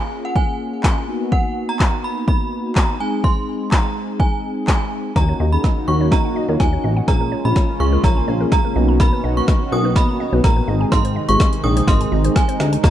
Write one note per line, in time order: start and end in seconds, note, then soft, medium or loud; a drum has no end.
0.00 1.04 A#3 medium
0.00 1.05 C#4 medium
0.00 1.05 F4 medium
0.00 1.05 G#4 medium
0.00 0.22 G#5 medium
0.25 0.35 F#5 medium
0.36 0.83 G#5 medium
0.36 kick loud
0.84 1.33 G#5 medium
0.84 kick loud
0.84 snare medium
0.84 clap loud
1.07 2.96 A#3 medium
1.07 2.96 B3 medium
1.07 2.96 D#4 medium
1.07 2.96 F#4 medium
1.32 1.70 F#5 medium
1.32 kick loud
1.69 2.02 A#5 medium
1.80 kick loud
1.80 snare medium
1.80 clap loud
2.04 2.27 B5 medium
2.28 2.73 B5 medium
2.28 kick loud
2.76 2.98 A#5 medium
2.76 kick loud
2.76 snare medium
2.76 clap loud
3.00 5.12 G#3 medium
3.00 5.12 C4 medium
3.00 5.12 D#4 medium
3.00 5.12 G#4 medium
3.00 3.11 G#5 medium
3.24 3.73 C6 medium
3.24 kick loud
3.72 4.21 A#5 medium
3.72 kick loud
3.72 snare medium
3.72 clap loud
4.20 4.67 G#5 medium
4.20 kick loud
4.68 5.13 G#5 medium
4.68 kick loud
4.68 snare medium
4.68 clap loud
5.16 5.34 D#2 loud
5.16 8.72 C#3 medium
5.16 5.43 A#3 medium
5.16 7.06 A#3 medium
5.16 5.43 C#4 medium
5.16 5.43 D#4 medium
5.16 7.06 D#4 medium
5.16 5.23 F#4 medium
5.16 7.06 F#4 medium
5.16 5.43 F#4 medium
5.16 5.54 A#5 medium
5.16 kick loud
5.16 snare soft
5.29 5.35 C#5 medium
5.40 5.58 D#2 medium
5.40 5.47 D#5 medium
5.52 5.79 A#3 medium
5.52 5.79 C#4 medium
5.52 5.79 D#4 medium
5.52 5.79 G#4 medium
5.52 5.85 B5 medium
5.64 5.71 D#5 medium
5.64 kick loud
5.64 snare medium
5.88 6.13 D#2 medium
5.88 6.06 A#3 medium
5.88 6.06 C#4 medium
5.88 6.06 D#4 medium
5.88 5.95 F#4 medium
5.88 6.06 F#4 medium
5.88 6.10 C#6 medium
6.01 6.07 C#5 medium
6.12 6.29 D#3 loud
6.12 6.39 A#3 medium
6.12 6.39 C#4 medium
6.12 6.39 D#4 medium
6.12 6.39 F#4 medium
6.12 6.19 D#5 medium
6.12 6.46 A#5 medium
6.12 kick loud
6.12 snare medium
6.25 6.31 F#5 medium
6.36 6.43 D#5 medium
6.49 6.57 D#2 medium
6.49 6.66 A#3 medium
6.49 6.66 C#4 medium
6.49 6.66 D#4 medium
6.49 6.66 F4 medium
6.49 6.55 C#5 medium
6.60 6.78 D#2 medium
6.60 6.67 F#4 medium
6.60 7.09 G#5 medium
6.60 kick loud
6.60 snare medium
6.73 6.99 A#3 medium
6.73 6.99 C#4 medium
6.73 6.99 D#4 medium
6.73 6.99 F#4 medium
6.73 6.79 C#5 medium
6.84 7.02 A1 medium
6.84 6.91 D#5 medium
6.97 7.03 F#5 medium
7.08 7.35 A#1 loud
7.08 8.74 G#3 medium
7.08 7.35 A#3 medium
7.08 10.64 C#4 medium
7.08 7.35 C#4 medium
7.08 8.74 F4 medium
7.08 7.35 F4 medium
7.08 7.15 G#4 medium
7.08 7.35 G#4 medium
7.08 7.42 A#5 loud
7.08 kick loud
7.08 snare medium
7.21 7.27 A#4 medium
7.32 7.39 C#5 medium
7.45 7.53 A#1 medium
7.45 7.71 A#3 medium
7.45 7.71 C#4 medium
7.45 7.71 F4 medium
7.45 7.71 A#4 medium
7.45 7.81 B5 medium
7.56 7.63 C#5 medium
7.56 kick loud
7.56 snare medium
7.80 7.98 C#2 medium
7.80 7.98 A#3 medium
7.80 7.98 C#4 medium
7.80 7.98 F4 medium
7.80 7.87 G#4 medium
7.80 7.98 G#4 medium
7.80 8.05 C#6 loud
7.92 7.98 A#4 medium
8.04 8.21 A#1 loud
8.04 8.31 A#3 medium
8.04 8.31 C#4 medium
8.04 8.31 F4 medium
8.04 8.31 A#4 medium
8.04 8.11 C#5 medium
8.04 8.38 A#5 loud
8.04 kick loud
8.04 snare medium
8.17 8.23 G#5 medium
8.28 8.46 A#1 medium
8.28 8.35 C#5 medium
8.40 8.58 A#3 medium
8.40 8.58 C#4 medium
8.40 8.58 F4 medium
8.40 8.58 G#4 medium
8.40 8.47 A#4 medium
8.52 8.59 G#4 medium
8.52 8.97 A#5 loud
8.52 kick loud
8.52 snare medium
8.64 8.75 A#3 medium
8.64 8.76 C#4 medium
8.64 8.76 F4 medium
8.64 8.76 G#4 medium
8.64 8.71 A#4 medium
8.76 9.11 B1 loud
8.76 10.66 B2 medium
8.76 12.80 D#3 medium
8.76 9.24 A#3 medium
8.76 9.24 B3 medium
8.76 9.24 D#4 medium
8.76 10.66 F#4 medium
8.76 9.24 F#4 medium
8.76 8.83 D#5 medium
8.88 8.94 A#5 medium
9.00 9.07 A#4 medium
9.00 9.38 B5 loud
9.00 kick loud
9.00 snare medium
9.13 9.19 B4 medium
9.24 9.41 B1 medium
9.24 9.31 D#5 medium
9.36 9.63 A#3 medium
9.36 9.63 B3 medium
9.36 9.63 D#4 medium
9.36 9.63 F#4 medium
9.36 9.73 C#6 medium
9.48 9.55 D#5 medium
9.48 kick loud
9.48 snare medium
9.72 9.97 B1 loud
9.72 9.90 A#3 medium
9.72 9.90 B3 medium
9.72 9.90 D#4 medium
9.72 9.90 F#4 medium
9.72 9.79 A#4 medium
9.72 9.97 D#6 loud
9.85 9.91 B4 medium
9.96 10.13 B2 loud
9.96 10.23 A#3 medium
9.96 10.23 B3 medium
9.96 10.23 D#4 medium
9.96 10.23 F#4 medium
9.96 10.03 D#5 medium
9.96 10.30 B5 medium
9.96 kick loud
9.96 snare medium
10.09 10.15 A#5 medium
10.20 10.27 D#5 medium
10.33 10.41 B1 medium
10.33 10.50 A#3 medium
10.33 10.50 B3 medium
10.33 10.50 D#4 medium
10.33 10.50 F#4 medium
10.33 10.39 B4 medium
10.44 10.62 A#1 medium
10.44 10.51 A#4 medium
10.44 10.89 A#5 medium
10.44 kick loud
10.44 snare medium
10.56 10.68 A#3 medium
10.56 10.68 B3 medium
10.56 10.67 D#4 medium
10.56 10.68 F#4 medium
10.56 10.63 B4 medium
10.68 10.86 G#1 loud
10.68 12.82 C3 medium
10.68 11.16 G#3 medium
10.68 12.82 G#3 medium
10.68 11.16 C4 medium
10.68 11.16 D#4 medium
10.68 12.90 D#4 medium
10.68 11.16 G#4 medium
10.68 10.75 D#5 medium
10.81 10.87 G#5 medium
10.92 11.19 G#1 loud
10.92 10.99 G#4 loud
10.92 11.30 C6 loud
10.92 kick loud
10.92 snare medium
11.05 11.11 C5 medium
11.05 closed hi-hat medium
11.16 11.23 D#5 medium
11.28 11.37 G#1 medium
11.28 11.55 G#3 medium
11.28 11.55 C4 medium
11.28 11.55 D#4 medium
11.28 11.55 G#4 medium
11.28 11.65 C#6 loud
11.28 closed hi-hat medium
11.40 11.47 D#5 medium
11.40 kick loud
11.40 snare medium
11.53 closed hi-hat soft
11.64 11.82 A#1 loud
11.64 11.82 G#3 medium
11.64 11.82 C4 medium
11.64 11.82 D#4 medium
11.64 11.71 G#4 medium
11.64 11.82 G#4 medium
11.64 11.89 D#6 loud
11.77 11.83 C5 medium
11.77 closed hi-hat medium
11.88 12.05 G#1 loud
11.88 12.15 G#3 medium
11.88 12.15 C4 medium
11.88 12.15 D#4 medium
11.88 12.15 A#4 medium
11.88 11.95 D#5 medium
11.88 12.22 C6 loud
11.88 kick loud
11.88 snare medium
12.01 12.07 G#5 medium
12.01 closed hi-hat medium
12.12 12.30 G#1 medium
12.12 12.19 D#5 medium
12.24 12.42 G#3 medium
12.24 12.42 C4 medium
12.24 12.42 D#4 medium
12.24 12.42 G#4 medium
12.24 12.30 C5 medium
12.24 closed hi-hat medium
12.36 12.43 G#4 medium
12.36 12.85 G#5 medium
12.36 kick loud
12.36 snare medium
12.48 12.75 G#3 medium
12.48 12.75 C4 medium
12.48 12.75 D#4 medium
12.48 12.75 G#4 medium
12.48 12.54 C5 medium
12.48 closed hi-hat medium
12.60 12.78 D2 medium
12.60 12.67 D#5 medium
12.60 snare medium
12.72 12.78 G#5 medium
12.72 closed hi-hat medium
12.84 12.90 D#2 loud
12.84 12.90 C#3 medium
12.84 12.90 F#3 medium
12.84 12.90 A#3 medium
12.84 12.90 C#4 medium
12.84 12.90 D#4 medium
12.84 12.90 F#4 loud
12.84 12.90 F#4 medium
12.84 12.90 A#5 loud
12.84 muted clean electric guitar stroke soft
12.84 kick loud
12.84 snare medium